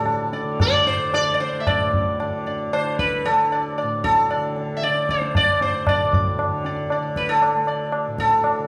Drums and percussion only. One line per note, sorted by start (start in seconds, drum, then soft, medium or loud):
0.06 tabla na medium
0.33 tabla te medium
0.60 tabla na medium
0.60 tabla ge medium
0.87 tabla te medium
1.14 tabla na medium
1.40 tabla te medium
1.67 tabla na loud
1.67 tabla ge medium
1.93 tabla ge medium
2.20 tabla na medium
2.46 tabla te medium
2.73 tabla na medium
2.99 tabla ke medium
3.26 tabla na medium
3.52 tabla na medium
3.78 tabla na medium
4.04 tabla ke medium
4.31 tabla na medium
4.57 tabla te medium
4.82 tabla te medium
4.95 tabla te medium
5.09 tabla ke medium
5.22 tabla te medium
5.35 tabla na medium
5.35 tabla ge medium
5.61 tabla te medium
5.87 tabla na loud
5.87 tabla ge medium
6.13 tabla ge medium
6.39 tabla na medium
6.65 tabla te medium
6.90 tabla na medium
7.16 tabla ke medium
7.42 tabla na medium
7.67 tabla na medium
7.92 tabla na medium
8.18 tabla ke medium
8.44 tabla na medium